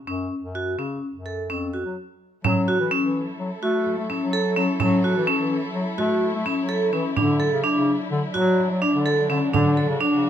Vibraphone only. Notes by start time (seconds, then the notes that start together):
0.07 C#4
0.55 F#4
0.79 C#4
1.26 A4
1.50 C#4
1.73 F#4
2.44 C#4
2.68 F#4
2.91 C#4
3.63 F#4
4.10 C#4
4.33 A4
4.56 C#4
4.80 C#4
5.04 F#4
5.27 C#4
5.98 F#4
6.46 C#4
6.69 A4
6.93 C#4
7.17 D4
7.40 A4
7.64 D4
8.34 F#4
8.82 D4
9.06 A4
9.30 C#4
9.53 D4
9.77 A4
10.01 D4